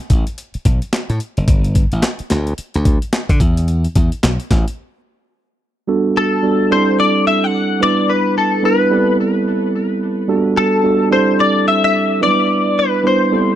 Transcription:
0.10 A1, kick, closed hi-hat
0.27 closed hi-hat
0.38 closed hi-hat
0.54 muted slap bass stroke, closed hi-hat
0.65 B1, kick, closed hi-hat
0.82 closed hi-hat
0.93 snare, clap, closed hi-hat
1.10 A2, closed hi-hat
1.20 closed hi-hat
1.37 F#1, closed hi-hat
1.48 G1, kick, closed hi-hat
1.64 closed hi-hat
1.75 kick, closed hi-hat
1.92 A1, closed hi-hat
2.03 snare, clap, closed hi-hat
2.19 muted slap bass stroke, closed hi-hat
2.30 D2, snare, closed hi-hat
2.47 closed hi-hat
2.58 muted slap bass stroke, closed hi-hat
2.74 D2, closed hi-hat
2.85 kick, closed hi-hat
3.02 closed hi-hat
3.13 snare, clap, closed hi-hat
3.29 D3, kick, closed hi-hat
3.40 E2, kick, closed hi-hat
3.57 closed hi-hat
3.68 closed hi-hat
3.84 closed hi-hat
3.95 E2, kick, closed hi-hat
4.12 closed hi-hat
4.23 B1, snare, clap, closed hi-hat
4.40 closed hi-hat
4.51 A1, kick, snare, closed hi-hat
4.68 closed hi-hat
5.87 G3 B3 D4 F#4 A4
6.17 A4
6.43 G3 B3 D4 F#4 A4
6.70 G3 C4 D4 E4 A4 C5
7.00 D5
7.27 E5
7.44 F#5
7.80 G3 B3 D4 E4 B4 D5
8.10 B4
8.38 A4
8.63 G3 B3 D4 E4 B4
8.90 G3 B3 C4 E4 A4
10.28 G3 A#3 D4 F#4 A4
10.35 B3
10.57 A4
10.83 G3 B3 D4 F#4 A4
11.11 G3 C4 D4 E4 A4 C5
11.40 D5
11.68 E5
11.84 E5
12.21 F#3 B3 D4 E4 B4 D5
12.27 G3
12.79 B4
13.03 G3 B3 D4 E4 B4 C5
13.31 G3 B3 C4 E4 A4

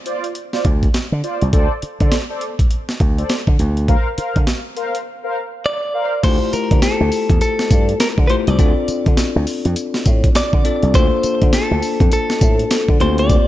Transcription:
0.06 F4 C5 D5, closed hi-hat
0.24 closed hi-hat
0.35 closed hi-hat
0.53 F4 C5 D5, snare
0.65 D2, kick, closed hi-hat
0.83 kick, closed hi-hat
0.94 snare, closed hi-hat
1.12 D3
1.23 F4 C5 D5, closed hi-hat
1.42 C2, closed hi-hat
1.53 D2 A4 C5 D5, kick, closed hi-hat
1.82 muted slap bass stroke, closed hi-hat
2.00 D3 A4 C5 D5, kick, closed hi-hat
2.12 snare, closed hi-hat
2.29 A4 C5 D5
2.41 closed hi-hat
2.59 kick, closed hi-hat
2.71 closed hi-hat
2.89 snare
3.00 D2, kick, closed hi-hat
3.18 A4 C5 D5, closed hi-hat
3.29 snare, closed hi-hat
3.47 D3, kick
3.59 D2, closed hi-hat
3.77 closed hi-hat
3.88 A#4 C5 F5, kick, closed hi-hat
4.18 A#4 C5 F5, muted slap bass stroke, closed hi-hat
4.36 D3, kick, closed hi-hat
4.47 snare, closed hi-hat
4.76 A#4 C5 F5, closed hi-hat
4.95 closed hi-hat
5.24 A#4 C5 F5
5.66 D5
5.94 A#4 C5 F5
6.23 D2 A3 E4 F4 G4 C5, kick, closed hi-hat, crash, tambourine
6.53 A#4, muted slap bass stroke, closed hi-hat, tambourine
6.71 D3, kick, closed hi-hat
6.82 A4, muted slap bass stroke, snare, closed hi-hat, tambourine
7.00 D2
7.12 open hi-hat, tambourine
7.30 E2, kick, closed hi-hat
7.41 A4, closed hi-hat, tambourine
7.59 snare
7.71 G2, kick, closed hi-hat, tambourine
7.89 closed hi-hat
8.00 A#4, snare, closed hi-hat, tambourine
8.18 D3, kick
8.27 A3 E4 F4 G4 B4 C5, closed hi-hat
8.47 C2 D5, closed hi-hat
8.59 D2 C4 D4 F4 A4 D5, kick, closed hi-hat, tambourine
8.88 muted slap bass stroke, closed hi-hat, tambourine
9.06 D3, kick, closed hi-hat
9.17 muted slap bass stroke, snare, closed hi-hat, tambourine
9.36 D2
9.47 open hi-hat, tambourine
9.65 F2, closed hi-hat
9.76 closed hi-hat, tambourine
9.94 snare
10.06 A2, kick, closed hi-hat, tambourine
10.24 kick, closed hi-hat
10.35 D5, snare, closed hi-hat, tambourine
10.53 D3, kick
10.64 C4 D4 F4 A4 D5, closed hi-hat
10.83 C2, closed hi-hat
10.94 D2 A#3 D4 F4 A4 C5, kick, closed hi-hat, tambourine
11.23 muted slap bass stroke, closed hi-hat, tambourine
11.42 D3, kick, closed hi-hat
11.53 A4, muted slap bass stroke, snare, closed hi-hat, tambourine
11.71 D2
11.82 open hi-hat, tambourine
12.00 F2, kick, closed hi-hat
12.12 A4, closed hi-hat, tambourine
12.30 snare
12.41 A2, kick, closed hi-hat, tambourine
12.59 closed hi-hat
12.71 snare, closed hi-hat, tambourine
12.89 D3, kick
13.00 D2 A#3 C4 F4 G4 C5, closed hi-hat
13.18 D5, closed hi-hat
13.30 kick, closed hi-hat, tambourine

